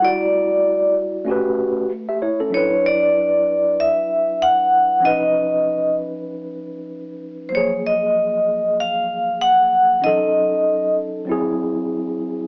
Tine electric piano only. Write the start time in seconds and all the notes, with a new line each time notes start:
0.00 G3 E4
0.04 F#4 D5
1.25 A3 C#4 F#4
1.30 G4 B4
2.09 G4 E5
2.22 E4 C#5
2.40 C#4 A4
2.50 F#3 D4
2.55 E4 B4
5.00 F3 C#4
5.05 D#4 B4
7.50 F#3 A#3
7.55 F3 G#4
10.00 E3 C#4
10.04 F#3 D#4 A4
11.25 F#3 C4
11.29 E4 G#4